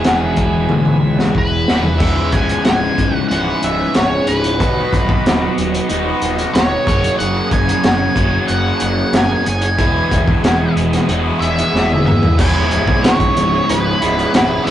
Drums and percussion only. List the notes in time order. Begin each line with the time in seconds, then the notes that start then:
0.04 snare, closed hi-hat
0.36 kick, closed hi-hat
0.69 high tom
0.85 high tom
1.19 snare
1.35 kick
1.68 snare
1.83 floor tom
2.00 kick, crash
2.32 kick, closed hi-hat
2.49 closed hi-hat
2.65 snare, closed hi-hat
2.98 kick, closed hi-hat
3.31 closed hi-hat
3.63 closed hi-hat
3.94 snare, closed hi-hat
4.27 closed hi-hat
4.44 closed hi-hat
4.60 kick, closed hi-hat
4.93 kick, closed hi-hat
5.09 kick
5.26 snare, closed hi-hat
5.58 closed hi-hat
5.74 closed hi-hat
5.89 closed hi-hat
6.22 closed hi-hat
6.38 closed hi-hat
6.55 snare, closed hi-hat
6.87 kick, closed hi-hat
7.04 closed hi-hat
7.20 closed hi-hat
7.51 kick, closed hi-hat
7.69 closed hi-hat
7.84 snare, closed hi-hat
8.16 kick, closed hi-hat
8.48 closed hi-hat
8.80 closed hi-hat
9.13 snare, closed hi-hat
9.46 closed hi-hat
9.61 closed hi-hat
9.78 kick, closed hi-hat
10.11 kick, closed hi-hat
10.28 kick
10.44 snare, closed hi-hat
10.77 closed hi-hat
10.93 snare, closed hi-hat
11.09 closed hi-hat
11.42 closed hi-hat
11.58 closed hi-hat
11.75 snare
11.91 high tom
12.07 mid tom
12.23 floor tom
12.39 kick, crash
12.71 closed hi-hat
12.88 kick
13.04 snare, closed hi-hat
13.20 kick, closed hi-hat
13.37 closed hi-hat
13.69 closed hi-hat
14.02 closed hi-hat
14.19 closed hi-hat
14.34 snare, closed hi-hat
14.67 closed hi-hat